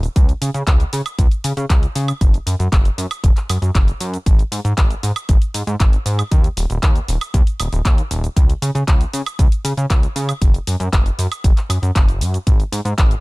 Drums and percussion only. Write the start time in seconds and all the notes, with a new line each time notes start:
0.03 closed hi-hat, shaker
0.16 kick, closed hi-hat, shaker
0.29 closed hi-hat, shaker
0.42 open hi-hat, shaker
0.54 closed hi-hat, shaker
0.67 kick, clap, closed hi-hat, shaker
0.80 closed hi-hat, shaker
0.93 open hi-hat, shaker
1.06 closed hi-hat, high woodblock, shaker
1.19 kick, closed hi-hat, shaker
1.31 closed hi-hat, shaker
1.44 open hi-hat, shaker
1.57 closed hi-hat, shaker
1.70 kick, clap, closed hi-hat, shaker
1.83 closed hi-hat, shaker
1.96 open hi-hat, shaker
2.08 closed hi-hat, high woodblock, shaker
2.21 kick, closed hi-hat, shaker
2.34 closed hi-hat, shaker
2.47 open hi-hat, shaker
2.60 closed hi-hat, shaker
2.72 kick, clap, closed hi-hat, shaker
2.85 closed hi-hat, shaker
2.98 open hi-hat, shaker
3.11 closed hi-hat, high woodblock, shaker
3.24 kick, closed hi-hat, shaker
3.37 clap, closed hi-hat, shaker
3.49 open hi-hat, high woodblock, shaker
3.62 closed hi-hat, shaker
3.75 kick, clap, closed hi-hat, shaker
3.88 closed hi-hat, shaker
4.00 open hi-hat, shaker
4.14 closed hi-hat, shaker
4.26 kick, closed hi-hat, shaker
4.39 closed hi-hat, shaker
4.52 open hi-hat, shaker
4.65 closed hi-hat, shaker
4.78 kick, clap, closed hi-hat, shaker
4.90 closed hi-hat, shaker
5.03 open hi-hat, shaker
5.16 closed hi-hat, high woodblock, shaker
5.29 kick, closed hi-hat, shaker
5.42 closed hi-hat, shaker
5.54 open hi-hat, shaker
5.67 closed hi-hat, shaker
5.80 kick, clap, closed hi-hat, shaker
5.93 closed hi-hat, shaker
6.06 open hi-hat, shaker
6.19 closed hi-hat, high woodblock, shaker
6.31 kick, closed hi-hat, shaker
6.44 closed hi-hat, shaker
6.57 open hi-hat, shaker
6.70 closed hi-hat, shaker
6.83 kick, clap, closed hi-hat, shaker
6.96 closed hi-hat, shaker
7.08 open hi-hat, shaker
7.21 closed hi-hat, high woodblock, shaker
7.34 kick, closed hi-hat, shaker
7.47 closed hi-hat, shaker
7.60 open hi-hat, high woodblock, shaker
7.73 closed hi-hat, shaker
7.85 kick, clap, closed hi-hat, shaker
7.98 closed hi-hat, shaker
8.11 open hi-hat, shaker
8.24 closed hi-hat, shaker
8.36 kick, closed hi-hat, shaker
8.50 closed hi-hat, shaker
8.62 open hi-hat, shaker
8.75 closed hi-hat, shaker
8.88 kick, clap, closed hi-hat, shaker
9.01 closed hi-hat, shaker
9.13 open hi-hat, shaker
9.26 closed hi-hat, high woodblock, shaker
9.39 kick, closed hi-hat, shaker
9.52 closed hi-hat, shaker
9.65 open hi-hat, shaker
9.77 closed hi-hat, shaker
9.90 kick, clap, closed hi-hat, shaker
10.03 closed hi-hat, shaker
10.16 open hi-hat, shaker
10.29 closed hi-hat, high woodblock, shaker
10.42 kick, closed hi-hat, shaker
10.54 closed hi-hat, shaker
10.67 open hi-hat, shaker
10.80 closed hi-hat, shaker
10.93 kick, clap, closed hi-hat, shaker
11.06 closed hi-hat, shaker
11.19 open hi-hat, shaker
11.32 closed hi-hat, high woodblock, shaker
11.44 kick, closed hi-hat, shaker
11.57 clap, closed hi-hat, shaker
11.70 open hi-hat, high woodblock, shaker
11.83 closed hi-hat, shaker
11.95 kick, clap, closed hi-hat, shaker
12.09 closed hi-hat, shaker
12.21 open hi-hat, shaker
12.34 closed hi-hat, shaker
12.47 kick, closed hi-hat, shaker
12.60 closed hi-hat, shaker
12.73 open hi-hat, shaker
12.85 closed hi-hat, shaker
12.98 kick, clap, closed hi-hat, shaker
13.11 closed hi-hat, shaker